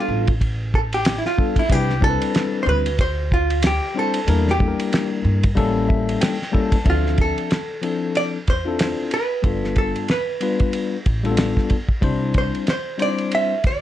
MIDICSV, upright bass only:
0, 0, Header, 1, 2, 480
1, 0, Start_track
1, 0, Key_signature, -1, "minor"
1, 0, Tempo, 645161
1, 1262, Time_signature, 4, 2, 24, 8
1, 10276, End_track
2, 0, Start_track
2, 0, Title_t, "Upright bass"
2, 0, Program_c, 0, 32
2, 61, Note_on_c, 0, 33, 82
2, 894, Note_off_c, 0, 33, 0
2, 1260, Note_on_c, 0, 36, 104
2, 1600, Note_off_c, 0, 36, 0
2, 1979, Note_on_c, 0, 38, 93
2, 2813, Note_off_c, 0, 38, 0
2, 3182, Note_on_c, 0, 40, 108
2, 3520, Note_off_c, 0, 40, 0
2, 3903, Note_on_c, 0, 43, 94
2, 4115, Note_off_c, 0, 43, 0
2, 4144, Note_on_c, 0, 33, 108
2, 4568, Note_off_c, 0, 33, 0
2, 5102, Note_on_c, 0, 38, 97
2, 5440, Note_off_c, 0, 38, 0
2, 6309, Note_on_c, 0, 40, 80
2, 6645, Note_off_c, 0, 40, 0
2, 7024, Note_on_c, 0, 31, 98
2, 7362, Note_off_c, 0, 31, 0
2, 8230, Note_on_c, 0, 33, 76
2, 8565, Note_off_c, 0, 33, 0
2, 8945, Note_on_c, 0, 36, 92
2, 9282, Note_off_c, 0, 36, 0
2, 10150, Note_on_c, 0, 38, 78
2, 10276, Note_off_c, 0, 38, 0
2, 10276, End_track
0, 0, End_of_file